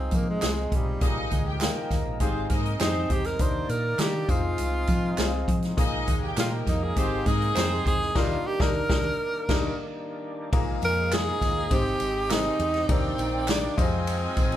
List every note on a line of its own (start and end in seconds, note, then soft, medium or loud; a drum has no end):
0.00 2.18 F3 medium
0.00 1.00 G#3 medium
0.00 0.17 C4 medium
0.00 0.24 C4 medium
0.00 1.00 C4 medium
0.00 0.24 D#4 medium
0.00 2.18 D#4 medium
0.00 0.24 F4 medium
0.00 0.24 G#4 medium
0.11 0.36 F3 loud
0.11 kick medium
0.11 closed hi-hat medium
0.11 tambourine medium
0.16 0.29 A#3 medium
0.30 0.77 G#3 medium
0.41 0.66 C2 medium
0.41 0.76 C4 medium
0.41 0.76 D#4 medium
0.41 0.76 F4 medium
0.41 0.76 G#4 medium
0.41 snare loud
0.41 clap medium
0.41 closed hi-hat medium
0.41 tambourine medium
0.72 0.96 B1 medium
0.72 1.33 G3 medium
0.72 kick medium
0.72 closed hi-hat medium
1.01 1.26 A#1 loud
1.01 1.87 A#2 medium
1.01 3.38 G#3 medium
1.01 1.36 A#3 medium
1.01 2.20 A#3 medium
1.01 1.44 D#4 loud
1.01 1.36 D#4 medium
1.01 1.36 F4 medium
1.01 1.36 G#4 medium
1.01 1.43 D#5 loud
1.01 kick loud
1.01 closed hi-hat medium
1.31 1.68 D2 medium
1.31 1.55 G#3 medium
1.31 1.55 G#4 medium
1.31 kick medium
1.31 closed hi-hat medium
1.31 tambourine soft
1.46 1.88 G4 medium
1.46 1.88 G5 medium
1.61 1.95 A#3 medium
1.61 2.17 A#3 medium
1.61 1.95 D#4 medium
1.61 1.95 F4 medium
1.61 1.95 A#4 medium
1.61 2.17 A#4 medium
1.61 snare loud
1.61 clap medium
1.61 closed hi-hat medium
1.61 tambourine medium
1.91 2.03 D#2 medium
1.91 kick medium
1.91 snare soft
1.91 closed hi-hat medium
1.91 tambourine medium
2.05 2.18 A#1 medium
2.20 2.45 G#1 loud
2.20 3.06 G#2 medium
2.20 2.44 C4 medium
2.20 2.55 C4 medium
2.20 3.39 C4 medium
2.20 2.55 D#4 medium
2.20 3.39 D#4 medium
2.20 2.45 F4 medium
2.20 2.55 G4 medium
2.20 2.55 G#4 loud
2.20 2.44 C5 loud
2.20 2.45 F5 loud
2.20 kick medium
2.20 closed hi-hat medium
2.20 tambourine soft
2.50 2.74 G#2 loud
2.50 2.74 A#3 medium
2.50 2.74 D#4 medium
2.50 2.74 A#4 loud
2.50 2.75 D#5 loud
2.50 kick medium
2.50 closed hi-hat medium
2.50 tambourine soft
2.65 closed hi-hat soft
2.80 3.04 F2 medium
2.80 3.22 C4 loud
2.80 3.15 C4 medium
2.80 3.15 D#4 medium
2.80 3.13 D#4 medium
2.80 3.15 G4 medium
2.80 3.15 G#4 medium
2.80 3.22 C5 loud
2.80 snare loud
2.80 clap medium
2.80 closed hi-hat medium
2.80 tambourine medium
3.10 3.34 E2 medium
3.10 3.28 G4 loud
3.10 kick medium
3.10 closed hi-hat medium
3.24 3.43 A#4 medium
3.24 snare soft
3.24 closed hi-hat soft
3.39 3.64 D#2 loud
3.39 4.25 D#3 medium
3.39 4.29 D#3 medium
3.39 4.29 A#3 medium
3.39 3.74 D4 medium
3.39 3.74 D#4 medium
3.39 3.74 G4 medium
3.39 3.74 A#4 medium
3.39 3.71 C5 loud
3.39 4.29 D5 medium
3.39 kick loud
3.39 closed hi-hat medium
3.39 tambourine soft
3.69 3.93 A#2 medium
3.69 4.02 A#4 loud
3.69 closed hi-hat medium
3.69 tambourine soft
3.98 4.23 D#3 loud
3.98 4.29 D4 medium
3.98 4.27 D#4 medium
3.98 4.29 G4 medium
3.98 4.32 G4 loud
3.98 4.29 A#4 medium
3.98 snare loud
3.98 clap medium
3.98 closed hi-hat medium
3.98 tambourine medium
4.28 4.53 F2 medium
4.28 6.94 F3 medium
4.28 8.11 G#3 medium
4.28 5.00 C4 medium
4.28 5.76 C4 medium
4.28 5.00 D#4 medium
4.28 8.11 D#4 medium
4.28 5.00 F4 medium
4.28 5.78 F4 loud
4.28 5.00 G#4 medium
4.28 kick loud
4.28 closed hi-hat medium
4.28 tambourine medium
4.58 4.83 C2 loud
4.58 closed hi-hat medium
4.58 tambourine soft
4.87 5.12 F3 medium
4.87 kick medium
4.87 closed hi-hat medium
4.87 tambourine medium
5.17 5.42 C2 loud
5.17 5.52 C4 medium
5.17 5.52 D#4 medium
5.17 5.52 F4 medium
5.17 5.52 G#4 medium
5.17 snare loud
5.17 clap medium
5.17 closed hi-hat medium
5.17 tambourine medium
5.48 5.72 F3 medium
5.48 kick medium
5.48 closed hi-hat medium
5.62 snare soft
5.62 closed hi-hat soft
5.77 6.02 A#1 loud
5.77 6.62 A#2 medium
5.77 6.12 A#3 medium
5.77 6.96 A#3 medium
5.77 6.12 D#4 medium
5.77 6.20 D#4 loud
5.77 6.12 F4 medium
5.77 6.12 G#4 medium
5.77 6.20 D#5 loud
5.77 kick loud
5.77 closed hi-hat medium
5.77 tambourine soft
6.07 6.32 D#2 medium
6.07 6.31 G#3 medium
6.07 6.31 G#4 loud
6.07 kick loud
6.07 closed hi-hat medium
6.07 tambourine medium
6.23 6.64 G4 medium
6.23 6.64 G5 medium
6.37 6.61 A#2 loud
6.37 6.71 A#3 medium
6.37 6.93 A#3 medium
6.37 6.71 D#4 medium
6.37 6.71 F4 medium
6.37 6.53 F4 medium
6.37 6.71 G4 medium
6.37 6.93 A#4 loud
6.37 snare loud
6.37 clap medium
6.37 closed hi-hat loud
6.37 tambourine medium
6.67 6.91 F2 medium
6.67 6.85 D#4 medium
6.67 kick medium
6.67 snare soft
6.67 closed hi-hat medium
6.67 tambourine medium
6.84 6.99 G#4 medium
6.96 7.21 G#1 loud
6.96 7.81 G#2 medium
6.96 8.14 D#3 medium
6.96 8.14 C4 medium
6.96 7.31 C4 medium
6.96 7.21 C4 medium
6.96 7.31 D#4 medium
6.96 7.20 F4 medium
6.96 7.31 G4 medium
6.96 7.29 G4 medium
6.96 7.31 G#4 medium
6.96 7.20 C5 loud
6.96 7.21 F5 loud
6.96 kick medium
6.96 closed hi-hat medium
6.96 tambourine medium
7.26 7.50 G#2 medium
7.26 7.50 A#3 medium
7.26 7.50 D#4 loud
7.26 7.86 G#4 loud
7.26 7.51 A#4 loud
7.26 7.50 D#5 loud
7.26 kick medium
7.26 closed hi-hat medium
7.26 tambourine medium
7.42 closed hi-hat soft
7.55 7.80 F2 medium
7.55 7.90 C4 medium
7.55 7.98 C4 loud
7.55 7.90 D#4 medium
7.55 7.90 G4 medium
7.55 7.90 A#4 medium
7.55 7.98 C5 loud
7.55 snare loud
7.55 clap medium
7.55 closed hi-hat medium
7.55 tambourine medium
7.86 8.10 E2 medium
7.86 8.18 G#4 loud
7.86 kick loud
7.86 closed hi-hat medium
8.01 snare soft
8.15 8.36 D#2 loud
8.15 8.35 D#3 loud
8.15 10.50 D#3 medium
8.15 10.50 G3 medium
8.15 10.50 A#3 medium
8.15 8.35 D4 loud
8.15 10.50 D4 medium
8.15 8.35 D#4 loud
8.15 8.48 F4 medium
8.15 8.35 G4 loud
8.15 8.35 A#4 loud
8.15 kick loud
8.15 snare loud
8.15 crash medium
8.47 8.63 G4 loud
8.60 8.80 D#2 loud
8.60 8.80 D4 loud
8.60 8.80 D#4 loud
8.60 8.80 G4 loud
8.60 8.80 A#4 loud
8.60 10.09 A#4 loud
8.60 kick loud
8.60 snare loud
8.89 9.10 D#2 loud
8.89 9.09 D4 loud
8.89 9.10 D#4 loud
8.89 9.09 G4 loud
8.89 9.10 A#4 loud
8.89 kick loud
8.89 snare loud
9.49 9.69 D#2 loud
9.49 9.69 D#3 loud
9.49 9.69 D4 loud
9.49 9.69 D#4 loud
9.49 9.69 G4 loud
9.49 9.69 A#4 loud
9.49 kick loud
9.49 snare loud
9.49 crash medium
10.52 10.77 A#1 loud
10.52 11.38 A#2 medium
10.52 11.69 F3 medium
10.52 12.87 G#3 medium
10.52 11.68 A#3 medium
10.52 11.70 A#3 medium
10.52 10.87 A#3 medium
10.52 12.87 D#4 medium
10.52 10.87 D#4 medium
10.52 10.87 F4 medium
10.52 11.69 G#4 medium
10.52 10.87 G#4 medium
10.52 10.87 A#4 loud
10.52 11.68 F5 medium
10.52 kick loud
10.52 ride medium
10.82 11.30 F2 medium
10.82 11.11 A#4 loud
10.82 ride medium
10.82 tambourine soft
11.12 11.46 A#3 medium
11.12 11.46 D#4 medium
11.12 11.46 F4 medium
11.12 11.46 G#4 medium
11.12 11.75 G#4 loud
11.12 11.46 A#4 medium
11.12 snare loud
11.12 clap loud
11.12 ride medium
11.12 tambourine medium
11.41 11.66 D#2 medium
11.41 kick medium
11.41 snare soft
11.41 ride medium
11.41 tambourine medium
11.71 11.95 G#1 loud
11.71 12.56 G#2 medium
11.71 12.05 G#3 medium
11.71 12.05 C4 medium
11.71 12.87 C4 medium
11.71 12.88 C4 medium
11.71 12.05 D#4 medium
11.71 12.87 G4 medium
11.71 12.05 G4 medium
11.71 12.34 G4 loud
11.71 12.05 C5 medium
11.71 12.87 D#5 medium
11.71 kick medium
11.71 ride medium
11.71 tambourine medium
12.00 12.49 G#1 medium
12.00 ride medium
12.00 tambourine medium
12.30 12.64 C4 medium
12.30 12.64 D#4 medium
12.30 12.93 D#4 loud
12.30 12.64 G4 medium
12.30 12.64 G#4 medium
12.30 12.64 A#4 medium
12.30 snare loud
12.30 clap medium
12.30 ride medium
12.30 tambourine loud
12.59 12.83 E2 medium
12.59 ride medium
12.74 snare soft
12.74 ride soft
12.89 13.13 D#2 loud
12.89 13.74 D#3 medium
12.89 13.77 D#3 medium
12.89 13.77 A#3 medium
12.89 13.51 C4 loud
12.89 13.23 D4 medium
12.89 13.23 D#4 medium
12.89 13.76 D#4 medium
12.89 13.23 G4 medium
12.89 13.23 A#4 medium
12.89 13.23 D5 medium
12.89 13.76 D5 medium
12.89 13.77 D5 medium
12.89 13.76 G5 loud
12.89 kick loud
12.89 ride medium
13.18 13.67 A#1 medium
13.18 ride medium
13.18 tambourine medium
13.48 13.78 D4 medium
13.48 13.82 D4 medium
13.48 13.76 D#4 medium
13.48 13.76 G4 medium
13.48 13.78 A#4 medium
13.48 13.78 D5 medium
13.48 snare loud
13.48 clap loud
13.48 ride medium
13.48 tambourine medium
13.77 14.26 F2 medium
13.77 14.57 F3 medium
13.77 14.57 G#3 medium
13.77 14.57 C4 medium
13.77 14.48 D#4 medium
13.77 14.57 D#4 medium
13.77 14.57 F4 medium
13.77 14.48 F4 medium
13.77 13.84 G4 medium
13.77 14.48 C5 medium
13.77 14.48 D#5 loud
13.77 14.57 D#5 medium
13.77 14.57 G#5 loud
13.77 kick loud
13.77 ride medium
13.77 tambourine medium
13.84 14.52 G#4 medium
14.07 ride medium
14.07 tambourine medium
14.37 14.57 A#1 loud
14.37 kick loud
14.37 ride medium
14.37 tambourine medium
14.52 ride soft